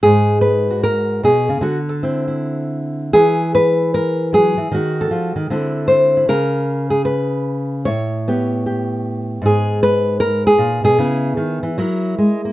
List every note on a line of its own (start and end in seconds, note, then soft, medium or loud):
0.03 1.23 G#2 medium
0.03 0.41 G#4 medium
0.41 0.83 B4 medium
0.71 1.61 F#4 soft
0.83 1.23 A#4 medium
1.23 1.49 B2 medium
1.23 1.63 G#4 medium
1.49 1.61 C#3 medium
1.61 3.13 D3 medium
1.61 1.77 F#4 medium
1.89 2.64 A4 medium
2.03 3.15 C4 soft
2.03 2.27 E4 soft
2.28 3.15 E4 soft
3.13 4.56 E3 medium
3.13 3.53 G#4 medium
3.55 3.93 B4 medium
3.94 4.32 A#4 medium
4.33 4.58 F#3 medium
4.33 4.72 G#4 medium
4.57 4.71 E3 medium
4.71 5.10 D#3 medium
4.71 5.37 F#4 medium
5.01 5.51 A4 medium
5.11 5.35 F3 medium
5.36 5.50 D#3 medium
5.50 6.28 D3 medium
5.50 6.29 C4 soft
5.50 6.16 E4 soft
5.50 5.87 A4 soft
5.88 6.29 C5 medium
6.17 6.32 E4 soft
6.29 7.87 C#3 medium
6.29 6.90 A#4 medium
6.90 7.05 G#4 medium
7.05 7.85 B4 medium
7.85 9.40 A2 medium
7.85 9.41 C#5 medium
8.28 10.97 B3 soft
8.28 8.65 G4 soft
8.66 9.41 G4 soft
9.42 10.57 G#2 medium
9.46 9.82 G#4 medium
9.83 10.20 B4 loud
10.20 10.45 A#4 medium
10.47 10.83 G#4 medium
10.58 10.83 A#2 medium
10.84 10.97 B2 medium
10.84 11.62 G#4 medium
10.98 11.36 C#3 medium
10.98 11.77 B3 soft
10.98 11.75 E4 soft
11.37 11.62 D#3 medium
11.63 11.76 E3 medium
11.78 12.18 F#3 medium
11.78 12.52 E4 medium
11.78 12.52 A#4 medium
12.18 12.44 G#3 medium
12.45 12.52 A#3 soft